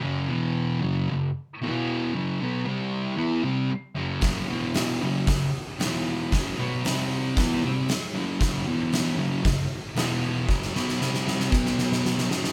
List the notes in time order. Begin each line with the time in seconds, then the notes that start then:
0.02 F#2 C#3 F#3
0.28 E2 B2 E3
0.81 F#2 C#3 F#3
1.09 F#2 C#3
1.62 E2 B2 E3
2.14 F#2 C#3 F#3
2.41 B2 F#3 B3
2.65 C3 G3 C4
3.17 E3 B3 E4
3.43 C3 G3 C4
3.70 muted distorted electric guitar stroke
3.95 F#2 C#3 F#3
4.21 F#2 C#3 F#3, kick, snare, open hi-hat
4.48 E2 B2 E3
4.74 snare, open hi-hat
5.02 F#2 C#3 F#3
5.27 F#2 C#3, kick, snare, open hi-hat
5.79 E2 B2 E3, snare, open hi-hat
6.32 F#2 C#3 F#3, kick, snare, open hi-hat
6.57 B2 F#3 B3
6.85 C3 G3 C4, snare, open hi-hat
7.37 E3 B3 E4, kick, snare, open hi-hat
7.64 C3 G3 C4
7.89 muted distorted electric guitar stroke, snare, open hi-hat
8.15 F#2 C#3 F#3
8.40 F#2 C#3 F#3, kick, snare, open hi-hat
8.66 E2 B2 E3
8.92 snare, open hi-hat
9.17 F#2 C#3 F#3
9.43 F#2 C#3, kick, snare, open hi-hat
9.95 E2 B2 E3, snare, open hi-hat
10.47 F#2 C#3 F#3, kick, snare
10.62 snare
10.75 B2 F#3 B3, snare
10.89 snare
11.01 C3 G3 C4, snare
11.14 snare
11.28 snare
11.40 snare
11.51 B2 F#3 B3, kick, snare
11.66 snare
11.78 snare
11.92 snare
12.06 snare
12.18 snare
12.29 F#2 C#3 F#3, snare
12.44 snare